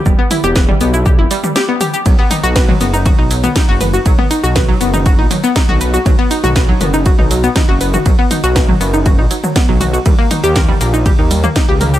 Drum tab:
RD |----------------|x---x---x---x---|x---x---x---x---|x---x---x---x---|
HH |--o---o---o---o-|--o---o---o---o-|--o---o---o---o-|--o---o---o---o-|
SH |x-xxx-xxx-xxx-xx|x-xxx-xxx-xxx-xx|x-xxx-xxx-xxx-xx|x-xxx-xxx-xxx-xx|
SD |----o-------o---|----o-------o---|----o-------o---|----o-------o---|
T2 |--o--o--o--o--o-|--o--o--o--o--o-|-o--o--o--o--o--|o--o--o--o--o--o|
BD |o---o---o-------|o---o---o---o---|o---o---o---o---|o---o---o---o---|

RD |x---x---x---x---|x---x---x---x---|
HH |--o---o---o---o-|--o---o---o---o-|
SH |x-xxx-xxx-xxx-xx|x-xxx-xxx-xxx-xx|
SD |----o-------o---|----o-------o---|
T2 |--o--o--o--o--o-|--o--o--o--o--o-|
BD |o---o---o---o---|o---o---o---o---|